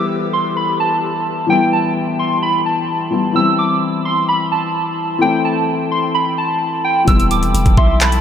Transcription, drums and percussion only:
7.08 kick, closed hi-hat
7.20 closed hi-hat
7.31 closed hi-hat
7.43 closed hi-hat
7.55 closed hi-hat
7.66 kick, closed hi-hat
7.77 kick
8.01 clap, closed hi-hat
8.12 closed hi-hat

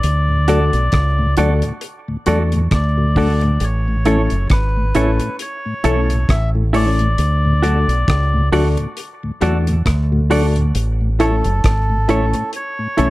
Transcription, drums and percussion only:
0.03 closed hi-hat
0.48 closed hi-hat
0.73 closed hi-hat
0.92 kick, cross-stick, closed hi-hat
1.37 closed hi-hat
1.62 closed hi-hat
1.81 closed hi-hat
2.26 closed hi-hat
2.52 closed hi-hat
2.71 kick, cross-stick, closed hi-hat
3.16 kick, open hi-hat
3.41 closed hi-hat
3.60 closed hi-hat
4.05 closed hi-hat
4.30 closed hi-hat
4.50 kick, cross-stick, closed hi-hat
4.95 closed hi-hat
5.20 closed hi-hat
5.39 closed hi-hat
5.84 closed hi-hat
6.10 closed hi-hat
6.29 kick, cross-stick, closed hi-hat
6.74 open hi-hat
6.99 closed hi-hat
7.18 closed hi-hat
7.63 closed hi-hat
7.89 closed hi-hat
8.08 kick, cross-stick, closed hi-hat
8.53 open hi-hat
8.77 closed hi-hat
8.97 closed hi-hat
9.41 closed hi-hat
9.67 closed hi-hat
9.86 kick, cross-stick, closed hi-hat
10.31 open hi-hat
10.56 closed hi-hat
10.75 closed hi-hat
11.20 closed hi-hat
11.44 closed hi-hat
11.64 kick, cross-stick, closed hi-hat
12.09 closed hi-hat
12.34 closed hi-hat
12.53 closed hi-hat
12.98 closed hi-hat

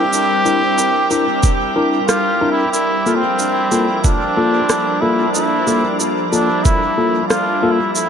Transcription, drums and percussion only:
0.13 shaker
0.46 shaker
0.78 shaker
1.11 shaker
1.43 kick, shaker
2.09 cross-stick, shaker
2.74 shaker
3.06 shaker
3.39 shaker
3.72 shaker
4.04 kick, shaker
4.70 cross-stick, shaker
5.35 shaker
5.67 shaker
6.00 shaker
6.33 shaker
6.65 kick, shaker
7.30 cross-stick, shaker
7.96 shaker

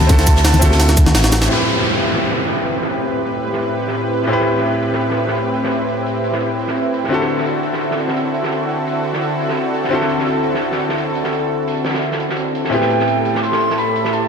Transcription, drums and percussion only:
0.01 high conga
0.09 kick, closed hi-hat, ride, high bongo
0.19 snare, cabasa
0.27 kick, closed hi-hat, cabasa
0.36 snare
0.45 snare, closed hi-hat, ride, high bongo
0.54 snare, closed hi-hat, high conga, cabasa
0.62 kick, closed hi-hat, cabasa
0.71 snare, high bongo
0.79 snare, closed hi-hat, ride
0.89 snare, cabasa
0.97 kick, closed hi-hat, cabasa
1.06 snare, high bongo, high conga
1.14 snare, closed hi-hat, ride
1.24 snare, cabasa
1.32 snare, closed hi-hat, open hi-hat, high bongo, cabasa
1.41 snare, closed hi-hat
1.59 snare
1.77 snare
1.85 closed hi-hat
2.12 snare
2.20 closed hi-hat
2.30 snare
2.38 closed hi-hat
2.47 snare
2.55 closed hi-hat
2.72 closed hi-hat
2.82 snare
2.90 closed hi-hat
3.07 closed hi-hat
3.26 closed hi-hat
3.35 closed hi-hat
3.43 closed hi-hat
3.53 snare
3.61 closed hi-hat
3.77 open hi-hat
3.88 snare
3.95 closed hi-hat
4.13 closed hi-hat
4.23 snare
4.30 closed hi-hat
4.40 snare
4.48 closed hi-hat
4.58 snare
4.66 closed hi-hat
4.83 closed hi-hat
4.93 snare
5.01 closed hi-hat
5.10 snare
5.18 closed hi-hat
5.27 snare
5.35 closed hi-hat
5.54 closed hi-hat
5.63 snare
5.71 closed hi-hat
5.89 closed hi-hat
6.07 closed hi-hat
6.15 closed hi-hat
6.24 closed hi-hat
6.32 snare
6.41 closed hi-hat
6.59 open hi-hat
6.67 snare
6.76 closed hi-hat
6.94 closed hi-hat
7.04 snare
7.12 closed hi-hat
7.21 snare
7.28 closed hi-hat
7.38 snare
7.45 closed hi-hat
7.63 closed hi-hat
7.73 snare
7.81 closed hi-hat
7.91 snare
7.99 closed hi-hat
8.08 snare
8.16 closed hi-hat
8.34 closed hi-hat
8.43 snare
8.52 closed hi-hat
8.69 closed hi-hat
8.87 closed hi-hat
8.96 closed hi-hat
9.04 closed hi-hat
9.13 snare
9.22 closed hi-hat
9.39 open hi-hat
9.48 snare
9.57 closed hi-hat
9.74 closed hi-hat
9.84 snare
9.92 closed hi-hat
10.01 snare
10.09 closed hi-hat
10.19 snare
10.26 closed hi-hat
10.44 closed hi-hat
10.54 snare
10.62 closed hi-hat
10.72 snare
10.80 closed hi-hat
10.89 snare
10.98 closed hi-hat
11.15 closed hi-hat
11.24 snare
11.33 closed hi-hat
11.68 closed hi-hat
11.77 closed hi-hat
11.85 snare, closed hi-hat
11.89 snare, closed hi-hat
11.94 snare, closed hi-hat
12.02 closed hi-hat
12.11 snare
12.20 closed hi-hat
12.29 snare
12.37 closed hi-hat
12.55 closed hi-hat
12.64 snare
12.72 closed hi-hat
12.81 snare
12.90 closed hi-hat
12.99 snare
13.08 closed hi-hat
13.25 closed hi-hat
13.35 snare
13.43 closed hi-hat
13.52 snare
13.60 closed hi-hat
13.70 snare
13.78 closed hi-hat
13.96 closed hi-hat
14.05 snare
14.13 closed hi-hat

